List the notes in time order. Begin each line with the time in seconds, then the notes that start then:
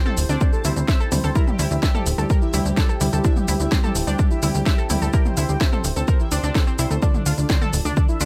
Already playing: C3 G3 E4 G4 C5 G5
0.06 C4 A4 C5, mid tom, shaker
0.17 D1, open hi-hat, shaker
0.29 D2 C4 D4 C5, shaker
0.41 C4 D4 C5, kick, shaker
0.53 A4 A5, shaker
0.65 D2 C3 G3 C4 E4 C5, open hi-hat, shaker
0.76 D2 C4 C5, shaker
0.88 C4 C5 E5, kick, snare, shaker
1.00 A4, shaker
1.12 D2 C3 G3 C4 E4 C5, open hi-hat, mid tom, shaker
1.24 D2 C4 A4 C5, shaker
1.35 C3 G3 E4 A#4 E5, kick, shaker
1.47 G3 G4, mid tom, shaker
1.59 D2 G3 E4 G4, open hi-hat, shaker
1.71 D2 E4 E5, shaker
1.83 G3 G4 E5, kick, snare, shaker
1.95 G3 G4 A4, mid tom, shaker
2.06 D1, open hi-hat, shaker
2.18 D2 G3 G4 A4, shaker
2.30 G4 A#4, kick, shaker
2.42 E4 E5, shaker
2.54 D2 C3 G3 E4 G4, open hi-hat, shaker
2.66 D2 G3 G4, shaker
2.77 G3 G4 A4, kick, snare, shaker
2.89 A4, shaker
3.01 D2 C3 G3 E4 G4, open hi-hat, shaker
3.13 D2 G3 G4 A4, shaker
3.24 C3 G3 D4 E4 E5, kick, shaker
3.36 G3 G4, mid tom, shaker
3.48 D2 G3 E4 G4, open hi-hat, shaker
3.60 D2 E4 E5, shaker
3.72 G3 C4 G4, kick, snare, shaker
3.84 G3 G4 A4, mid tom, shaker
3.95 D1, open hi-hat, shaker
4.07 D2 G3 D4 G4, shaker
4.19 D4 G4, kick, shaker
4.31 E4 E5, shaker
4.43 D2 C3 G3 E4 G4, open hi-hat, shaker
4.55 D2 G3 G4, shaker
4.66 G3 G4 E5, kick, snare, shaker
4.78 A4, shaker
4.90 D2 C3 G3 E4 G4, open hi-hat, mid tom, shaker
5.02 D2 G3 G4 A4, shaker
5.13 C3 G3 E4 G4 A#4 G5, kick, shaker
5.25 C4 C5, mid tom, shaker
5.37 D2 C4 E4 C5, open hi-hat, shaker
5.49 D2 G4 G5, shaker
5.61 C4 C5 E5, kick, snare, shaker
5.73 C4 A4 C5, mid tom, shaker
5.84 D1, open hi-hat, shaker
5.96 D2 C4 A4 C5, shaker
6.08 A#4 C5, kick, shaker
6.20 E4 E5, shaker
6.32 D2 C4 D4 C5, open hi-hat, shaker
6.43 D2 C4 D4 C5, shaker
6.55 C4 A4 C5, kick, snare, shaker
6.67 C4, shaker
6.79 C2 C3 G3 C4 E4 C5, open hi-hat, shaker
6.91 D2 A3 C4 C5, shaker
7.02 D3 A3 D4 F4 A4 D5 A5, kick, shaker
7.14 D3 D4, mid tom, shaker
7.26 D2 D3 D4 F4, open hi-hat, shaker
7.38 D2 D4 D5, shaker
7.50 D3 C4 D4, kick, snare, shaker
7.62 D3 D4 A4, mid tom, shaker
7.73 D1, open hi-hat, shaker
7.85 D2 D3 D4, shaker
7.97 D3 D4, kick, shaker
8.09 E4 E5, shaker
8.20 D2 D3 A3 D4 F4, open hi-hat, shaker